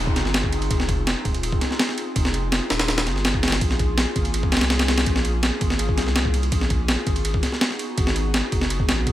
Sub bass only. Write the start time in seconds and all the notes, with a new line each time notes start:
Already playing: D#1
0.16 G1
0.70 F1
1.25 D#1
2.16 F1
2.71 D#1
3.07 G1
3.61 A#1
4.16 G#1
4.52 G#1
4.61 C2
5.07 A#1
5.61 G#1
5.98 C2
6.52 A#1
7.07 G#1
7.98 G#1
8.52 F#1
8.89 A#1